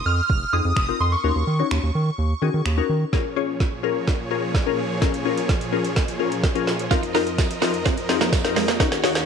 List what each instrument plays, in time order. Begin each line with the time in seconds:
Already playing: synth pluck C4 D#4 F4 A#4
0.06 analog synth bass F2, synth bell F6
0.30 analog synth bass F1, kick
0.53 analog synth bass F2, synth pluck C4 D#4 F4 G#4, synth bell D#6
0.65 analog synth bass F2
0.77 analog synth bass F1, finger snap, kick
0.89 synth pluck C4 D#4 F4 A#4
1.00 analog synth bass F2, synth bell C6
1.12 synth bell C#6
1.24 analog synth bass D#2, synth pluck C#4 D#4 F#4 A#4
1.36 analog synth bass D#2
1.47 analog synth bass D#3
1.59 synth pluck C#4 D#4 F#4 C#5
1.71 analog synth bass D#2, finger snap
1.83 analog synth bass D#2
1.95 analog synth bass D#3
2.18 analog synth bass D#2
2.42 analog synth bass D#3, synth pluck C#4 D#4 F#4 G#4
2.54 analog synth bass D#3
2.66 analog synth bass D#2, finger snap
2.77 synth pluck C#4 D#4 F#4 A#4
2.89 analog synth bass D#3
3.13 supersaw synth A#2 F3 G#4 C#5, synth pluck C#4 F4 G#4 A#4, kick, snare
3.36 synth pluck C#4 F4 G#4 C#5
3.60 kick, snare
3.83 synth pluck C#4 F4 G#4 A#4
4.08 kick, snare
4.31 synth pluck C#4 F4 G#4 A#4
4.54 kick, snare
4.66 synth pluck C#4 F4 G#4 A#4
5.01 synth pluck C#4 F4 G#4 A#4, kick, snare, closed hi-hat
5.14 closed hi-hat
5.25 synth pluck C#4 F4 G#4 A#4
5.38 closed hi-hat
5.49 kick, snare, closed hi-hat
5.61 closed hi-hat
5.72 synth pluck C#4 F4 G#4 A#4
5.85 closed hi-hat
5.96 kick, snare, closed hi-hat
6.08 closed hi-hat
6.19 synth pluck C#4 F4 G#4 A#4
6.32 closed hi-hat
6.43 kick, snare, closed hi-hat
6.55 synth pluck C#4 F4 G#4 A#4, closed hi-hat
6.67 snare
6.79 closed hi-hat
6.91 supersaw synth F2 A#4 D#5, synth pluck C4 D#4 F4 A#4, clean electric guitar F4, kick, snare, closed hi-hat
7.03 muted clean electric guitar stroke, closed hi-hat
7.14 synth pluck C4 D#4 F4 A#4, clean electric guitar D#4, snare, open hi-hat
7.27 closed hi-hat
7.38 kick, snare, closed hi-hat, tambourine
7.51 closed hi-hat
7.62 synth pluck C4 D#4 F4 A#4, clean electric guitar D#4, snare, open hi-hat
7.74 closed hi-hat
7.86 clean electric guitar C4, kick, snare, closed hi-hat
7.98 closed hi-hat
8.09 synth pluck C4 D#4 F4 G#4, muted clean electric guitar stroke, snare, open hi-hat
8.21 clean electric guitar A#3, snare, closed hi-hat
8.33 muted clean electric guitar stroke, kick, snare, closed hi-hat, tambourine
8.44 synth pluck C4 D#4 F4 A#4, snare, closed hi-hat
8.56 clean electric guitar G#3, snare, open hi-hat
8.68 clean electric guitar A#3, snare, closed hi-hat
8.80 supersaw synth D#2 D#3 F#4 C#5, synth pluck C#4 D#4 F#4 A#4, clean electric guitar D#4, kick, snare, closed hi-hat
8.92 muted clean electric guitar stroke, snare, closed hi-hat
9.04 clean electric guitar C#4, synth pluck C#4 D#4 F#4 C#5, snare, open hi-hat
9.15 snare, closed hi-hat